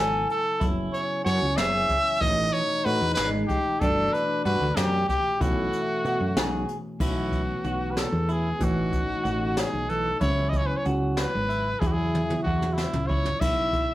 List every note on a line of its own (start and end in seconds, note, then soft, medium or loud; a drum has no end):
0.00 0.24 G#1 medium
0.00 0.58 C#3 medium
0.00 0.58 F#3 medium
0.00 0.59 B3 medium
0.00 0.59 E4 medium
0.00 0.27 A4 medium
0.00 0.37 G#5 medium
0.30 0.64 A4 medium
0.30 closed hi-hat medium
0.60 0.87 F#1 medium
0.60 2.18 C#3 medium
0.60 2.19 F#3 medium
0.60 2.19 B3 medium
0.60 2.22 C#4 loud
0.60 1.00 E4 medium
0.60 kick loud
0.60 closed hi-hat medium
0.64 2.20 E4 medium
0.93 1.23 C#5 medium
0.93 closed hi-hat medium
1.25 1.39 F#2 medium
1.25 1.45 F#4 medium
1.25 1.59 C#5 loud
1.25 snare soft
1.25 closed hi-hat medium
1.42 1.55 C#2 medium
1.57 1.84 F#1 medium
1.57 1.97 G#4 medium
1.57 2.22 E5 loud
1.57 snare loud
1.57 closed hi-hat medium
1.89 kick medium
1.89 closed hi-hat medium
2.20 2.48 A1 medium
2.20 3.78 B2 medium
2.20 2.61 E3 medium
2.20 3.78 E3 medium
2.20 3.79 A3 medium
2.20 3.79 C#4 medium
2.20 3.84 D#4 loud
2.20 2.54 D#5 loud
2.20 kick loud
2.20 closed hi-hat medium
2.53 2.86 C#5 medium
2.53 closed hi-hat medium
2.85 2.99 A2 medium
2.85 3.05 F#4 medium
2.85 3.14 B4 loud
2.85 closed hi-hat soft
3.01 3.14 E2 medium
3.15 3.44 G#1 medium
3.15 3.57 G#3 medium
3.15 3.30 B4 loud
3.15 snare loud
3.15 closed hi-hat medium
3.47 3.82 G4 medium
3.47 kick medium
3.47 closed hi-hat medium
3.80 4.08 G1 medium
3.80 5.37 B2 medium
3.80 5.39 E3 medium
3.80 5.39 A3 medium
3.80 4.21 D4 medium
3.80 5.15 D4 loud
3.80 5.39 D4 medium
3.80 4.14 A4 medium
3.80 kick loud
3.80 closed hi-hat medium
4.13 4.45 B4 medium
4.13 closed hi-hat medium
4.45 4.58 G2 medium
4.45 4.65 F#4 medium
4.45 4.78 B4 medium
4.45 closed hi-hat medium
4.61 4.74 D2 medium
4.77 5.03 F#2 medium
4.77 5.08 G4 medium
4.77 5.17 G4 medium
4.77 snare loud
4.77 closed hi-hat medium
5.08 5.43 G4 medium
5.08 kick medium
5.08 closed hi-hat medium
5.38 5.67 B1 medium
5.38 6.97 B2 medium
5.38 6.98 E3 soft
5.38 6.98 A3 medium
5.38 6.65 A3 medium
5.38 6.98 C#4 medium
5.38 5.81 E4 medium
5.38 6.69 F#4 medium
5.38 kick loud
5.38 closed hi-hat medium
5.73 closed hi-hat medium
6.05 6.18 B2 medium
6.05 6.25 F#4 medium
6.05 closed hi-hat medium
6.20 6.34 F#2 medium
6.37 6.64 B1 medium
6.37 6.77 G#4 medium
6.37 snare loud
6.37 closed hi-hat medium
6.69 closed hi-hat medium
6.99 7.53 B1 medium
6.99 8.57 B2 medium
6.99 8.58 E3 soft
6.99 8.58 A3 soft
6.99 8.63 B3 medium
6.99 8.59 C#4 medium
6.99 7.41 E4 medium
6.99 kick medium
6.99 crash medium
7.03 7.93 F#4 medium
7.32 kick medium
7.32 closed hi-hat soft
7.64 8.04 B1 medium
7.64 8.05 F#4 medium
7.64 closed hi-hat soft
7.91 8.00 B4 medium
7.97 8.33 A4 medium
7.97 snare medium
7.97 closed hi-hat medium
8.12 8.52 E2 medium
8.29 8.49 E4 medium
8.29 8.65 G#4 medium
8.29 closed hi-hat soft
8.59 9.13 A1 medium
8.59 10.17 B2 medium
8.59 10.17 E3 medium
8.59 9.00 E3 medium
8.59 10.18 A3 soft
8.59 10.18 C#4 medium
8.59 10.21 D#4 medium
8.59 kick medium
8.59 closed hi-hat medium
8.64 9.60 F#4 medium
8.93 kick medium
8.93 closed hi-hat medium
9.24 9.64 A1 medium
9.24 9.64 F#4 medium
9.24 closed hi-hat medium
9.57 9.91 G#4 medium
9.57 snare loud
9.57 closed hi-hat medium
9.73 10.13 B1 medium
9.89 10.09 E3 medium
9.89 10.20 A4 medium
9.89 closed hi-hat medium
10.20 10.74 C#2 medium
10.20 11.77 C#3 medium
10.20 11.78 F#3 medium
10.20 11.78 B3 medium
10.20 11.51 C#4 medium
10.20 10.61 E4 medium
10.20 11.79 E4 medium
10.20 10.51 C#5 medium
10.20 kick medium
10.20 closed hi-hat medium
10.49 10.59 D#5 medium
10.49 kick medium
10.49 closed hi-hat medium
10.57 10.68 C#5 medium
10.66 10.78 B4 medium
10.77 10.86 C#5 medium
10.85 11.25 C#2 medium
10.85 11.25 F#4 medium
10.85 closed hi-hat medium
11.17 11.81 B4 medium
11.17 snare loud
11.17 closed hi-hat medium
11.35 11.74 G#1 medium
11.49 11.69 E4 medium
11.49 closed hi-hat medium
11.80 12.34 E2 loud
11.80 13.38 C#3 medium
11.80 13.38 F#3 soft
11.80 13.39 B3 soft
11.80 12.21 E4 medium
11.80 13.06 E4 medium
11.80 13.39 E4 medium
11.80 11.89 G#4 medium
11.80 kick medium
11.80 closed hi-hat medium
11.87 11.94 F#4 medium
11.92 12.42 G#4 medium
12.15 high tom medium
12.30 high tom soft
12.43 12.85 E2 medium
12.43 12.75 F#4 medium
12.43 12.86 F#4 medium
12.43 kick medium
12.62 mid tom soft
12.73 13.09 E4 medium
12.78 snare medium
12.93 13.33 C#2 medium
12.93 mid tom medium
13.07 13.29 E4 medium
13.07 13.42 C#5 medium
13.07 kick medium
13.25 floor tom medium
13.39 13.94 B1 medium
13.39 13.94 C#3 medium
13.39 13.94 F#3 soft
13.39 13.94 B3 medium
13.39 13.94 E4 medium
13.39 13.81 E4 medium
13.39 13.94 E4 medium
13.39 13.94 E5 medium
13.39 kick medium
13.39 closed hi-hat medium
13.39 crash medium
13.73 kick medium
13.73 closed hi-hat medium